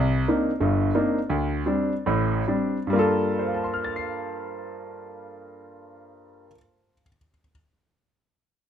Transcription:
0, 0, Header, 1, 2, 480
1, 0, Start_track
1, 0, Key_signature, -2, "minor"
1, 0, Tempo, 337838
1, 1844, Time_signature, 4, 2, 24, 8
1, 1844, Tempo, 389610
1, 3284, Tempo, 461184
1, 9762, End_track
2, 0, Start_track
2, 0, Title_t, "Grand piano"
2, 0, Program_c, 0, 0
2, 0, Note_on_c, 0, 36, 79
2, 333, Note_off_c, 0, 36, 0
2, 401, Note_on_c, 0, 58, 49
2, 405, Note_on_c, 0, 60, 49
2, 405, Note_on_c, 0, 62, 43
2, 413, Note_on_c, 0, 63, 59
2, 706, Note_off_c, 0, 58, 0
2, 708, Note_off_c, 0, 60, 0
2, 708, Note_off_c, 0, 62, 0
2, 713, Note_off_c, 0, 63, 0
2, 859, Note_on_c, 0, 31, 72
2, 865, Note_on_c, 0, 43, 72
2, 1275, Note_off_c, 0, 31, 0
2, 1278, Note_off_c, 0, 43, 0
2, 1345, Note_on_c, 0, 60, 47
2, 1345, Note_on_c, 0, 62, 48
2, 1346, Note_on_c, 0, 58, 58
2, 1357, Note_on_c, 0, 63, 58
2, 1674, Note_off_c, 0, 58, 0
2, 1674, Note_off_c, 0, 60, 0
2, 1674, Note_off_c, 0, 62, 0
2, 1680, Note_off_c, 0, 63, 0
2, 1842, Note_on_c, 0, 38, 72
2, 2232, Note_off_c, 0, 38, 0
2, 2289, Note_on_c, 0, 55, 52
2, 2290, Note_on_c, 0, 60, 50
2, 2300, Note_on_c, 0, 62, 57
2, 2607, Note_off_c, 0, 55, 0
2, 2608, Note_off_c, 0, 60, 0
2, 2613, Note_off_c, 0, 62, 0
2, 2786, Note_on_c, 0, 45, 72
2, 2789, Note_on_c, 0, 33, 68
2, 3218, Note_off_c, 0, 45, 0
2, 3219, Note_off_c, 0, 33, 0
2, 3294, Note_on_c, 0, 55, 50
2, 3295, Note_on_c, 0, 60, 46
2, 3301, Note_on_c, 0, 62, 55
2, 3592, Note_off_c, 0, 55, 0
2, 3592, Note_off_c, 0, 60, 0
2, 3595, Note_off_c, 0, 62, 0
2, 3703, Note_on_c, 0, 43, 63
2, 3734, Note_on_c, 0, 55, 65
2, 3764, Note_on_c, 0, 58, 65
2, 3796, Note_on_c, 0, 65, 61
2, 3827, Note_on_c, 0, 69, 80
2, 4245, Note_on_c, 0, 72, 44
2, 4323, Note_on_c, 0, 77, 39
2, 4405, Note_on_c, 0, 81, 39
2, 4501, Note_on_c, 0, 84, 39
2, 4605, Note_on_c, 0, 89, 38
2, 4718, Note_on_c, 0, 93, 34
2, 4840, Note_on_c, 0, 96, 33
2, 7433, Note_off_c, 0, 43, 0
2, 7464, Note_off_c, 0, 55, 0
2, 7495, Note_off_c, 0, 58, 0
2, 7526, Note_off_c, 0, 65, 0
2, 7557, Note_off_c, 0, 69, 0
2, 7934, Note_off_c, 0, 72, 0
2, 8012, Note_off_c, 0, 77, 0
2, 8094, Note_off_c, 0, 81, 0
2, 8190, Note_off_c, 0, 84, 0
2, 8294, Note_off_c, 0, 89, 0
2, 8407, Note_off_c, 0, 93, 0
2, 8529, Note_off_c, 0, 96, 0
2, 9762, End_track
0, 0, End_of_file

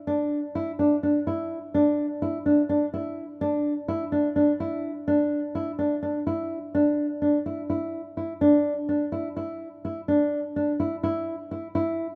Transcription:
0, 0, Header, 1, 2, 480
1, 0, Start_track
1, 0, Tempo, 476569
1, 71, Time_signature, 7, 3, 24, 8
1, 12238, End_track
2, 0, Start_track
2, 0, Title_t, "Nylon-string guitar"
2, 0, Program_c, 0, 24
2, 72, Note_on_c, 0, 62, 67
2, 386, Note_off_c, 0, 62, 0
2, 556, Note_on_c, 0, 64, 57
2, 712, Note_off_c, 0, 64, 0
2, 797, Note_on_c, 0, 62, 52
2, 952, Note_off_c, 0, 62, 0
2, 1038, Note_on_c, 0, 62, 57
2, 1193, Note_off_c, 0, 62, 0
2, 1278, Note_on_c, 0, 64, 55
2, 1590, Note_off_c, 0, 64, 0
2, 1757, Note_on_c, 0, 62, 67
2, 2069, Note_off_c, 0, 62, 0
2, 2236, Note_on_c, 0, 64, 57
2, 2391, Note_off_c, 0, 64, 0
2, 2475, Note_on_c, 0, 62, 52
2, 2631, Note_off_c, 0, 62, 0
2, 2713, Note_on_c, 0, 62, 60
2, 2869, Note_off_c, 0, 62, 0
2, 2957, Note_on_c, 0, 64, 59
2, 3269, Note_off_c, 0, 64, 0
2, 3436, Note_on_c, 0, 62, 71
2, 3749, Note_off_c, 0, 62, 0
2, 3912, Note_on_c, 0, 64, 59
2, 4069, Note_off_c, 0, 64, 0
2, 4150, Note_on_c, 0, 62, 59
2, 4307, Note_off_c, 0, 62, 0
2, 4389, Note_on_c, 0, 62, 58
2, 4547, Note_off_c, 0, 62, 0
2, 4634, Note_on_c, 0, 64, 54
2, 4948, Note_off_c, 0, 64, 0
2, 5112, Note_on_c, 0, 62, 68
2, 5426, Note_off_c, 0, 62, 0
2, 5590, Note_on_c, 0, 64, 55
2, 5748, Note_off_c, 0, 64, 0
2, 5828, Note_on_c, 0, 62, 58
2, 5986, Note_off_c, 0, 62, 0
2, 6068, Note_on_c, 0, 62, 57
2, 6226, Note_off_c, 0, 62, 0
2, 6311, Note_on_c, 0, 64, 58
2, 6626, Note_off_c, 0, 64, 0
2, 6794, Note_on_c, 0, 62, 61
2, 7107, Note_off_c, 0, 62, 0
2, 7269, Note_on_c, 0, 62, 49
2, 7427, Note_off_c, 0, 62, 0
2, 7512, Note_on_c, 0, 64, 49
2, 7669, Note_off_c, 0, 64, 0
2, 7752, Note_on_c, 0, 64, 53
2, 8066, Note_off_c, 0, 64, 0
2, 8230, Note_on_c, 0, 64, 43
2, 8387, Note_off_c, 0, 64, 0
2, 8472, Note_on_c, 0, 62, 69
2, 8786, Note_off_c, 0, 62, 0
2, 8950, Note_on_c, 0, 62, 55
2, 9108, Note_off_c, 0, 62, 0
2, 9187, Note_on_c, 0, 64, 56
2, 9346, Note_off_c, 0, 64, 0
2, 9432, Note_on_c, 0, 64, 53
2, 9747, Note_off_c, 0, 64, 0
2, 9918, Note_on_c, 0, 64, 52
2, 10073, Note_off_c, 0, 64, 0
2, 10155, Note_on_c, 0, 62, 66
2, 10469, Note_off_c, 0, 62, 0
2, 10637, Note_on_c, 0, 62, 62
2, 10793, Note_off_c, 0, 62, 0
2, 10874, Note_on_c, 0, 64, 57
2, 11031, Note_off_c, 0, 64, 0
2, 11114, Note_on_c, 0, 64, 61
2, 11428, Note_off_c, 0, 64, 0
2, 11596, Note_on_c, 0, 64, 52
2, 11752, Note_off_c, 0, 64, 0
2, 11834, Note_on_c, 0, 64, 70
2, 12149, Note_off_c, 0, 64, 0
2, 12238, End_track
0, 0, End_of_file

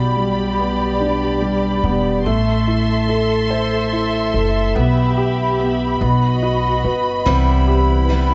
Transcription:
0, 0, Header, 1, 5, 480
1, 0, Start_track
1, 0, Tempo, 834492
1, 1298, Time_signature, 6, 3, 24, 8
1, 4798, End_track
2, 0, Start_track
2, 0, Title_t, "String section"
2, 0, Program_c, 0, 48
2, 0, Note_on_c, 0, 67, 58
2, 0, Note_on_c, 0, 74, 54
2, 0, Note_on_c, 0, 83, 63
2, 1276, Note_off_c, 0, 83, 0
2, 1284, Note_off_c, 0, 74, 0
2, 1285, Note_off_c, 0, 67, 0
2, 1297, Note_on_c, 0, 76, 59
2, 1298, Note_on_c, 0, 69, 63
2, 1299, Note_on_c, 0, 84, 70
2, 2723, Note_off_c, 0, 69, 0
2, 2723, Note_off_c, 0, 84, 0
2, 2735, Note_on_c, 0, 67, 62
2, 2735, Note_on_c, 0, 83, 70
2, 3435, Note_off_c, 0, 76, 0
2, 3449, Note_off_c, 0, 67, 0
2, 3454, Note_on_c, 0, 75, 56
2, 3455, Note_on_c, 0, 66, 63
2, 4168, Note_off_c, 0, 75, 0
2, 4169, Note_off_c, 0, 66, 0
2, 4169, Note_on_c, 0, 71, 54
2, 4171, Note_on_c, 0, 64, 60
2, 4798, Note_off_c, 0, 64, 0
2, 4798, Note_off_c, 0, 71, 0
2, 4798, Note_off_c, 0, 83, 0
2, 4798, End_track
3, 0, Start_track
3, 0, Title_t, "Grand piano"
3, 0, Program_c, 1, 0
3, 0, Control_c, 1, 64, 127
3, 0, Note_on_c, 1, 47, 55
3, 97, Note_on_c, 1, 55, 44
3, 340, Note_on_c, 1, 59, 42
3, 578, Note_on_c, 1, 62, 47
3, 808, Note_off_c, 1, 55, 0
3, 817, Note_on_c, 1, 55, 44
3, 1051, Note_off_c, 1, 59, 0
3, 1060, Note_on_c, 1, 59, 46
3, 1275, Note_off_c, 1, 47, 0
3, 1276, Note_off_c, 1, 62, 0
3, 1283, Note_off_c, 1, 55, 0
3, 1291, Note_off_c, 1, 59, 0
3, 1300, Note_on_c, 1, 57, 58
3, 1304, Control_c, 1, 64, 0
3, 1406, Control_c, 1, 64, 127
3, 1536, Note_on_c, 1, 64, 43
3, 1778, Note_on_c, 1, 69, 44
3, 2016, Note_on_c, 1, 72, 48
3, 2249, Note_off_c, 1, 64, 0
3, 2257, Note_on_c, 1, 64, 45
3, 2488, Note_off_c, 1, 69, 0
3, 2497, Note_on_c, 1, 69, 46
3, 2715, Note_off_c, 1, 57, 0
3, 2715, Note_off_c, 1, 72, 0
3, 2723, Note_off_c, 1, 64, 0
3, 2730, Note_off_c, 1, 69, 0
3, 2735, Note_on_c, 1, 59, 56
3, 2743, Control_c, 1, 64, 0
3, 2861, Control_c, 1, 64, 127
3, 2976, Note_on_c, 1, 67, 45
3, 3208, Note_off_c, 1, 59, 0
3, 3217, Note_on_c, 1, 59, 44
3, 3442, Note_off_c, 1, 67, 0
3, 3446, Note_off_c, 1, 59, 0
3, 3455, Note_on_c, 1, 59, 52
3, 3463, Control_c, 1, 64, 0
3, 3557, Control_c, 1, 64, 127
3, 3695, Note_on_c, 1, 66, 42
3, 3695, Note_on_c, 1, 75, 56
3, 3937, Note_on_c, 1, 71, 44
3, 4153, Note_off_c, 1, 75, 0
3, 4155, Note_off_c, 1, 59, 0
3, 4162, Note_off_c, 1, 66, 0
3, 4170, Note_off_c, 1, 71, 0
3, 4177, Note_on_c, 1, 60, 53
3, 4185, Control_c, 1, 64, 0
3, 4298, Control_c, 1, 64, 127
3, 4416, Note_on_c, 1, 67, 42
3, 4660, Note_on_c, 1, 71, 43
3, 4798, Note_off_c, 1, 60, 0
3, 4798, Note_off_c, 1, 67, 0
3, 4798, Note_off_c, 1, 71, 0
3, 4798, End_track
4, 0, Start_track
4, 0, Title_t, "Steel-string acoustic guitar"
4, 0, Program_c, 2, 25
4, 4173, Note_on_c, 2, 48, 67
4, 4175, Note_on_c, 2, 52, 72
4, 4178, Note_on_c, 2, 55, 77
4, 4180, Note_on_c, 2, 59, 67
4, 4183, Note_on_c, 2, 64, 76
4, 4646, Note_off_c, 2, 52, 0
4, 4653, Note_on_c, 2, 52, 59
4, 4655, Note_off_c, 2, 48, 0
4, 4657, Note_off_c, 2, 55, 0
4, 4659, Note_on_c, 2, 55, 58
4, 4660, Note_off_c, 2, 64, 0
4, 4662, Note_off_c, 2, 59, 0
4, 4665, Note_on_c, 2, 59, 51
4, 4669, Note_on_c, 2, 64, 57
4, 4798, Note_off_c, 2, 52, 0
4, 4798, Note_off_c, 2, 55, 0
4, 4798, Note_off_c, 2, 59, 0
4, 4798, Note_off_c, 2, 64, 0
4, 4798, End_track
5, 0, Start_track
5, 0, Title_t, "Upright bass"
5, 0, Program_c, 3, 32
5, 0, Note_on_c, 3, 35, 85
5, 1034, Note_off_c, 3, 35, 0
5, 1056, Note_on_c, 3, 28, 72
5, 1282, Note_off_c, 3, 28, 0
5, 1300, Note_on_c, 3, 33, 81
5, 2475, Note_off_c, 3, 33, 0
5, 2497, Note_on_c, 3, 30, 72
5, 2723, Note_off_c, 3, 30, 0
5, 2737, Note_on_c, 3, 35, 82
5, 3434, Note_off_c, 3, 35, 0
5, 3457, Note_on_c, 3, 35, 82
5, 3914, Note_off_c, 3, 35, 0
5, 3937, Note_on_c, 3, 31, 63
5, 4163, Note_off_c, 3, 31, 0
5, 4177, Note_on_c, 3, 36, 80
5, 4798, Note_off_c, 3, 36, 0
5, 4798, End_track
0, 0, End_of_file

